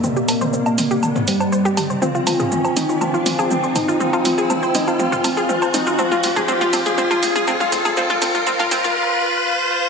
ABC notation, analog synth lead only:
X:1
M:4/4
L:1/8
Q:1/4=121
K:Fdor
V:1 name="Analog synth lead"
B,4- B, G,3 | F3 E F3 E | F3 E F3 E | F2 F2 F2 F2 |
F F F F F F F F |]